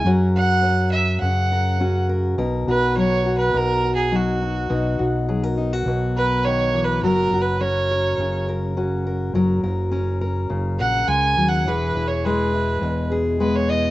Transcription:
<<
  \new Staff \with { instrumentName = "Fiddle" } { \time 4/4 \key b \major \tempo 4 = 103 r8 fis''4 e''8 fis''4. r8 | r8 b'8 \tuplet 3/2 { cis''4 b'8 ais'4 gis'8 } fis'4~ | fis'8 r2 b'8 \tuplet 3/2 { cis''4 b'8 } | \tuplet 3/2 { ais'4 b'8 } cis''4. r4. |
r2 r8 fis''8 \tuplet 3/2 { gis''4 fis''8 } | \tuplet 3/2 { b'4 cis''8 } b'4. r8 b'16 cis''16 dis''8 | }
  \new Staff \with { instrumentName = "Steel-string acoustic guitar" } { \time 4/4 \key b \major << { <cis' fis' ais'>2~ <cis' fis' ais'>8 ais'8 fis'8 ais'8 | ais'8 fis'8 ais'8 fis'4 fis'8 dis'8 dis'8 | dis'8 fis'8 gis'16 ais'16 dis'16 fis'8. ais'4. | fis'8 fis'8 ais'8 ais'4 ais'8 fis'8 ais'8 |
ais'8 ais'8 ais'8 ais'4 ais'4. | gis'8 e'8 gis'8 e'4 gis'8 b8 e'8 | } \\ { fis4 cis'4 cis4 cis'4 | b,4 fis4 b,4 fis4 | b,4 fis4 b,4 dis8 e8 | fis4 cis'4 cis4 cis'4 |
fis4 cis'4 cis4 gis8 fis8 | e4 gis4 b,4 gis4 | } >> }
  \new Staff \with { instrumentName = "Fingered electric bass" } { \clef bass \time 4/4 \key b \major fis,2 fis,2 | b,,8 b,,4. b,,2 | b,,8 b,,4. b,,2 | fis,,8 fis,,4. fis,,2 |
fis,,8 fis,,4. fis,,8 ais,,8 cis,8 dis,8 | e,,8 e,,4. e,,2 | }
>>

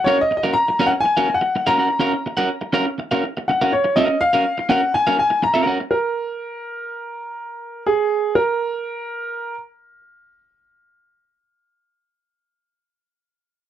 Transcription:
<<
  \new Staff \with { instrumentName = "Grand piano" } { \time 4/4 \key fis \major \tempo 4 = 123 \tuplet 3/2 { cis''8 dis''8 dis''8 ais''4 fis''8 gis''4 fis''8~ fis''8 ais''4~ } | ais''2 r4 fis''8 cis''8 | dis''8 eis''4 fis''8 gis''8 gis''8 ais''8 r8 | ais'1 |
gis'4 ais'2~ ais'8 r8 | r1 | r1 | }
  \new Staff \with { instrumentName = "Clean electric guitar" } { \time 4/4 \key fis \major <cis' fis' ais' eis''>16 r8 <cis' fis' ais' eis''>16 r8 <cis' fis' ais' eis''>16 r8 <cis' fis' ais' eis''>16 r8. <cis' fis' ais' eis''>16 <cis' fis' ais' fis''>16 r16 | <cis' fis' ais' eis''>16 r8 <cis' fis' ais' fis''>16 r8 <cis' fis' ais' eis''>16 r8 <cis' fis' ais' eis''>16 r8. <cis' fis' ais' eis''>16 r8 | <cis' fis' ais' eis''>8 r16 <cis' fis' ais' eis''>16 r8 <cis' fis' ais' eis''>16 r8 <cis' fis' ais' eis''>16 r8. <cis' fis' ais' eis''>16 <cis' fis' ais' fis''>16 r16 | r1 |
r1 | r1 | r1 | }
>>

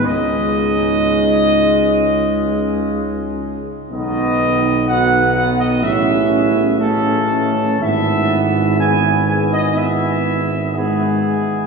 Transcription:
<<
  \new Staff \with { instrumentName = "Trumpet section" } { \time 4/4 \key cis \dorian \tempo 4 = 62 dis''2.~ dis''8 r8 | dis''4 fis''8 fis''16 dis''16 e''4 a'4 | e''4 gis''8 gis''16 dis''16 e''4 gis'4 | }
  \new Staff \with { instrumentName = "French horn section" } { \time 4/4 \key cis \dorian dis'2.~ dis'8 r8 | dis'4 fis'8 fis'16 dis'16 e'4 a4 | e'4 gis'8 gis'16 dis'16 e'4 gis4 | }
  \new Staff \with { instrumentName = "Trombone section" } { \clef bass \time 4/4 \key cis \dorian << { gis1 | b4 b4 cis'4 cis'4 | b4 b4 b4 b4 | } \\ { cis1 | dis4 dis4 cis4 cis8 dis8 | e4 e4 e4 e4 | } >> }
  \new Staff \with { instrumentName = "Tuba" } { \clef bass \time 4/4 \key cis \dorian cis,2.~ cis,8 r8 | b,,2 a,,2 | gis,,2.~ gis,,8 r8 | }
>>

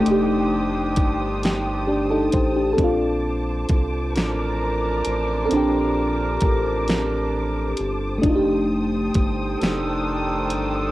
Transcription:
<<
  \new Staff \with { instrumentName = "String section" } { \time 6/8 \key bes \major \tempo 4. = 44 << { <c'' g'' ees'''>2. | <c'' d'''>2.~ | <c'' d'''>2. | <c'' g'' ees'''>2. | } \\ { a''2.~ | a''2.~ | a''2.~ | a''2. | } >> }
  \new Staff \with { instrumentName = "FM electric piano" } { \time 6/8 \key bes \major << { r2 <d' g'>16 <ees' a'>16 <g' c''>16 <d' g'>16~ | <d' g'>16 r2 r8. | r2. | r2. | } \\ { <a d' ees' g'>2. | <c' d' f' a'>2. | <c' d' g' a'>2. | <a d' ees' f' g'>2. | } >> }
  \new Staff \with { instrumentName = "Horn section" } { \time 6/8 \key bes \major <ees d' g'>2~ <ees d' g'>8 r8 | r4. <f d' bes'>4.~ | <f d' bes'>2~ <f d' bes'>8 r8 | r4. <ees d' a'>4. | }
  \new Staff \with { instrumentName = "Analog synth bass" } { \clef bass \time 6/8 \key bes \major f,,4 g,,4. a,,8 | bes,,4 c,8 a,,4 a,,8 | bes,,4 a,,4. g,,8 | f,,4 g,,8 f,,4 g,,8 | }
  \new DrumStaff \with { instrumentName = "Drums" } \drummode { \time 6/8 hh4 <hh bd>8 <hh sn>4 <hh bd>8 | <hh bd>4 <hh bd>8 <hh sn>4 hh8 | hh4 <hh bd>8 <hh sn>4 hh8 | <hh bd>4 <hh bd>8 <hh sn>4 hh8 | }
>>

